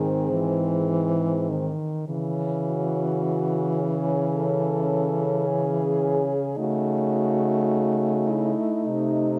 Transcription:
Already playing: G#2 D#3 C4 G#4
0.32 E3
1.50 D#3
2.08 C#3 E3 C#4
2.67 F#4
3.81 G#4
4.36 A4
5.46 G#4
6.57 C#3 A3 D#4 F#4
8.29 E4
8.85 C3 D#4

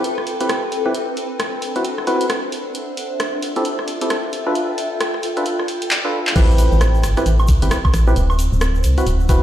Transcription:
Already playing: C4 A4 B4 G5
0.04 closed hi-hat
0.18 cross-stick
0.27 open hi-hat
0.41 C4 E4 G4 B4, closed hi-hat
0.49 cross-stick, closed hi-hat
0.72 open hi-hat
0.86 C4 E4 G4 B4
0.94 D4, closed hi-hat
1.17 open hi-hat
1.40 C5, cross-stick, closed hi-hat
1.62 E5, open hi-hat
1.76 C4 E4 F#4 B4, closed hi-hat
1.85 closed hi-hat
1.98 cross-stick
2.07 C4 E4 F#4 B4, open hi-hat
2.21 closed hi-hat
2.30 cross-stick, closed hi-hat
2.52 F4, open hi-hat
2.75 closed hi-hat
2.97 A4, open hi-hat
3.18 G5, cross-stick, closed hi-hat
3.42 open hi-hat
3.56 C4 E4 G4 A4, closed hi-hat
3.65 closed hi-hat
3.79 cross-stick
3.88 open hi-hat
4.01 C4 E4 G4 A4, closed hi-hat
4.10 cross-stick, closed hi-hat
4.33 open hi-hat
4.47 D4 F4 A4 B4
4.55 B4, closed hi-hat
4.78 open hi-hat
5.01 cross-stick, closed hi-hat
5.14 cross-stick
5.23 open hi-hat
5.37 D4 F4 A4 B4, closed hi-hat
5.46 closed hi-hat
5.59 cross-stick
5.68 open hi-hat
5.82 closed hi-hat
5.91 clap
6.05 D4 F4 A4 B4
6.27 clap
6.36 A1 C4 E4 G4 B4, kick, closed hi-hat, crash, shaker
6.50 shaker
6.58 open hi-hat, shaker
6.72 A1, shaker
6.81 cross-stick, closed hi-hat, shaker
6.95 shaker
7.03 G1, cross-stick, open hi-hat, shaker
7.17 C4 E4 G4 B4, cross-stick, closed hi-hat, shaker
7.26 A1, closed hi-hat, shaker
7.39 high woodblock, shaker
7.48 kick, open hi-hat, shaker
7.62 G1 C4 E4 G4 B4, closed hi-hat, shaker
7.71 cross-stick, closed hi-hat, shaker
7.85 kick, high woodblock, shaker
7.94 A1, cross-stick, open hi-hat, shaker
8.07 C4 E4 G4 B4, shaker
8.16 D1 E4, closed hi-hat, shaker
8.29 C5, high woodblock, shaker
8.39 open hi-hat, shaker
8.53 D1, shaker
8.61 cross-stick, closed hi-hat, shaker
8.75 shaker
8.84 C2, open hi-hat, shaker
8.98 C4 E4 F#4 B4, closed hi-hat, shaker
9.06 D1, closed hi-hat, shaker
9.20 shaker
9.29 C4 E4 F#4 B4, kick, open hi-hat, shaker

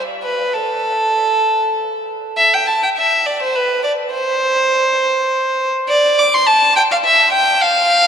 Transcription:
0.23 B4
0.53 A4
2.37 E5
2.54 G5
2.67 A5
2.83 G5
2.97 E5
3.26 D5
3.43 C5
3.56 B4
3.84 D5
4.12 C5
5.89 D5
6.19 D6
6.34 C6
6.47 A5
6.76 G5
6.91 F5
7.05 E5
7.33 G5
7.61 F5

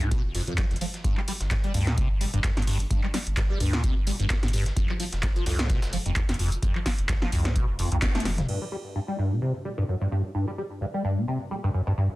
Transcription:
Already playing: C2
0.01 A2, closed hi-hat
0.11 B2, kick, closed hi-hat, tambourine
0.24 F1
0.35 F2, open hi-hat, tambourine
0.47 F2, closed hi-hat
0.58 F3, kick, snare, clap, closed hi-hat, tambourine
0.71 F1 E2, snare, closed hi-hat
0.76 closed hi-hat
0.81 F3, open hi-hat, tambourine
0.94 snare, closed hi-hat
1.04 G1 G2, kick, closed hi-hat, tambourine
1.17 G3, clap
1.28 G3, open hi-hat, tambourine
1.40 G1, snare, closed hi-hat
1.51 G2, kick, snare, clap, closed hi-hat, tambourine
1.64 G3, closed hi-hat
1.74 D2 G2, open hi-hat, tambourine
1.87 B2, snare, closed hi-hat
1.97 C3, kick, closed hi-hat, tambourine
2.10 G1
2.21 G3, open hi-hat, tambourine
2.34 G1 G2, closed hi-hat
2.44 F#2, kick, snare, clap, closed hi-hat, tambourine
2.57 G1 G2, snare, closed hi-hat
2.62 closed hi-hat
2.67 G2, open hi-hat
2.80 closed hi-hat
2.90 G1 G2, kick, closed hi-hat, tambourine
3.03 G3, clap
3.14 G3, snare, open hi-hat, tambourine
3.27 G1, closed hi-hat
3.37 G2, kick, snare, clap, closed hi-hat, tambourine
3.50 G3
3.60 D2 G2, open hi-hat, tambourine
3.73 B2, snare, closed hi-hat
3.84 C3, kick, closed hi-hat, tambourine
3.96 G1
4.07 G3, open hi-hat, tambourine
4.20 G1 G2, closed hi-hat
4.30 F#2, kick, snare, clap, closed hi-hat, tambourine
4.43 G1 G2, snare, closed hi-hat
4.48 closed hi-hat
4.53 G2, open hi-hat, tambourine
4.66 snare, closed hi-hat
4.76 F1 F2, kick, closed hi-hat, tambourine
4.89 F3, clap
5.00 F3, open hi-hat, tambourine
5.12 F1, snare, closed hi-hat
5.23 F2, kick, snare, clap, closed hi-hat, tambourine
5.36 F3, closed hi-hat
5.46 C2 F2, snare, open hi-hat, tambourine
5.59 A2, snare, closed hi-hat, tambourine
5.70 B2, kick, snare, closed hi-hat, tambourine
5.82 F1, snare, tambourine
5.93 F3, open hi-hat, tambourine
6.06 F1 F2, closed hi-hat
6.16 E2, kick, clap, closed hi-hat, tambourine
6.29 F1 F2, snare, closed hi-hat, tambourine
6.34 closed hi-hat
6.39 F2, open hi-hat
6.52 closed hi-hat, tambourine
6.62 F1 F2, kick, closed hi-hat, tambourine
6.75 F3, clap
6.86 F3, kick, snare, open hi-hat, tambourine
6.98 F1, closed hi-hat
7.09 F2, kick, snare, clap, closed hi-hat, tambourine
7.22 F3, snare
7.32 C2 F2, open hi-hat, tambourine
7.45 A2, snare, closed hi-hat
7.56 B2, kick, closed hi-hat, tambourine
7.68 F1
7.79 F2, open hi-hat, tambourine
7.92 C2 F2, closed hi-hat
8.02 F1, kick, snare, clap, closed hi-hat, tambourine
8.15 F1 A3, snare, closed hi-hat
8.20 closed hi-hat
8.25 F2, snare, open hi-hat, high tom, tambourine
8.38 F2, snare, closed hi-hat, mid tom
8.49 G2, crash
8.61 G3
8.72 G3
8.85 snare
8.95 G2
9.08 G3, closed hi-hat
9.19 G2
9.31 B2
9.42 C3
9.65 G3
9.78 G2
9.88 F#2, tambourine
10.01 G2
10.11 G2, open hi-hat
10.35 G2, tambourine
10.48 G3
10.58 G3, tambourine
10.81 G2, tambourine
10.94 G3
11.05 G2
11.17 B2
11.28 C3, tambourine
11.51 G3, tambourine
11.64 G2
11.74 F#2, tambourine
11.87 G2, snare
11.97 G2
12.10 snare

